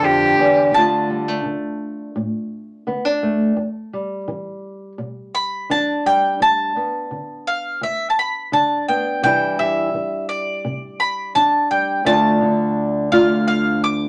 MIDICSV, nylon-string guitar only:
0, 0, Header, 1, 2, 480
1, 0, Start_track
1, 0, Tempo, 706714
1, 508, Time_signature, 4, 2, 24, 8
1, 9567, End_track
2, 0, Start_track
2, 0, Title_t, "Nylon-string guitar"
2, 0, Program_c, 0, 24
2, 0, Note_on_c, 0, 50, 59
2, 0, Note_on_c, 0, 59, 64
2, 0, Note_on_c, 0, 62, 64
2, 0, Note_on_c, 0, 67, 62
2, 17, Note_on_c, 0, 41, 65
2, 262, Note_off_c, 0, 41, 0
2, 267, Note_on_c, 0, 40, 62
2, 478, Note_off_c, 0, 59, 0
2, 480, Note_off_c, 0, 62, 0
2, 480, Note_off_c, 0, 67, 0
2, 503, Note_off_c, 0, 50, 0
2, 505, Note_off_c, 0, 40, 0
2, 508, Note_on_c, 0, 38, 53
2, 511, Note_on_c, 0, 50, 46
2, 516, Note_on_c, 0, 57, 45
2, 520, Note_on_c, 0, 62, 42
2, 527, Note_on_c, 0, 65, 47
2, 742, Note_off_c, 0, 57, 0
2, 744, Note_on_c, 0, 55, 36
2, 870, Note_off_c, 0, 55, 0
2, 870, Note_on_c, 0, 57, 34
2, 940, Note_off_c, 0, 38, 0
2, 978, Note_off_c, 0, 50, 0
2, 986, Note_on_c, 0, 50, 50
2, 1419, Note_off_c, 0, 50, 0
2, 1465, Note_on_c, 0, 45, 52
2, 1899, Note_off_c, 0, 45, 0
2, 1948, Note_off_c, 0, 62, 0
2, 1948, Note_on_c, 0, 50, 50
2, 1951, Note_on_c, 0, 59, 48
2, 2071, Note_off_c, 0, 59, 0
2, 2071, Note_on_c, 0, 62, 34
2, 2185, Note_off_c, 0, 57, 0
2, 2193, Note_on_c, 0, 57, 45
2, 2381, Note_off_c, 0, 50, 0
2, 2402, Note_off_c, 0, 57, 0
2, 2409, Note_off_c, 0, 65, 0
2, 2422, Note_on_c, 0, 40, 56
2, 2430, Note_off_c, 0, 62, 0
2, 2672, Note_on_c, 0, 55, 41
2, 2858, Note_off_c, 0, 40, 0
2, 2906, Note_on_c, 0, 52, 47
2, 3340, Note_off_c, 0, 52, 0
2, 3384, Note_on_c, 0, 47, 51
2, 3819, Note_off_c, 0, 47, 0
2, 3869, Note_on_c, 0, 52, 50
2, 3873, Note_on_c, 0, 62, 53
2, 4112, Note_off_c, 0, 55, 0
2, 4115, Note_on_c, 0, 55, 49
2, 4302, Note_off_c, 0, 52, 0
2, 4348, Note_on_c, 0, 38, 61
2, 4590, Note_off_c, 0, 55, 0
2, 4593, Note_on_c, 0, 59, 38
2, 4782, Note_off_c, 0, 38, 0
2, 4829, Note_on_c, 0, 50, 44
2, 5262, Note_off_c, 0, 50, 0
2, 5307, Note_on_c, 0, 38, 51
2, 5741, Note_off_c, 0, 38, 0
2, 5788, Note_on_c, 0, 50, 53
2, 5789, Note_off_c, 0, 62, 0
2, 5792, Note_on_c, 0, 62, 52
2, 6030, Note_off_c, 0, 59, 0
2, 6038, Note_on_c, 0, 59, 50
2, 6221, Note_off_c, 0, 50, 0
2, 6246, Note_off_c, 0, 59, 0
2, 6267, Note_on_c, 0, 48, 55
2, 6273, Note_on_c, 0, 52, 48
2, 6278, Note_on_c, 0, 55, 46
2, 6280, Note_off_c, 0, 62, 0
2, 6283, Note_on_c, 0, 62, 42
2, 6288, Note_on_c, 0, 64, 50
2, 6507, Note_off_c, 0, 55, 0
2, 6516, Note_on_c, 0, 55, 45
2, 6701, Note_off_c, 0, 48, 0
2, 6743, Note_off_c, 0, 52, 0
2, 6751, Note_on_c, 0, 52, 47
2, 7182, Note_off_c, 0, 52, 0
2, 7231, Note_on_c, 0, 48, 52
2, 7661, Note_off_c, 0, 48, 0
2, 7707, Note_off_c, 0, 62, 0
2, 7710, Note_on_c, 0, 52, 47
2, 7715, Note_on_c, 0, 62, 43
2, 7945, Note_off_c, 0, 55, 0
2, 7953, Note_on_c, 0, 55, 44
2, 8140, Note_off_c, 0, 52, 0
2, 8162, Note_off_c, 0, 62, 0
2, 8183, Note_on_c, 0, 38, 65
2, 8186, Note_off_c, 0, 55, 0
2, 8188, Note_on_c, 0, 57, 50
2, 8192, Note_off_c, 0, 64, 0
2, 8192, Note_on_c, 0, 62, 46
2, 8195, Note_on_c, 0, 65, 50
2, 8428, Note_on_c, 0, 50, 50
2, 8900, Note_off_c, 0, 57, 0
2, 8904, Note_off_c, 0, 62, 0
2, 8908, Note_on_c, 0, 57, 54
2, 8909, Note_off_c, 0, 65, 0
2, 8912, Note_on_c, 0, 62, 55
2, 8919, Note_on_c, 0, 65, 59
2, 9567, Note_off_c, 0, 38, 0
2, 9567, Note_off_c, 0, 50, 0
2, 9567, Note_off_c, 0, 57, 0
2, 9567, Note_off_c, 0, 62, 0
2, 9567, Note_off_c, 0, 65, 0
2, 9567, End_track
0, 0, End_of_file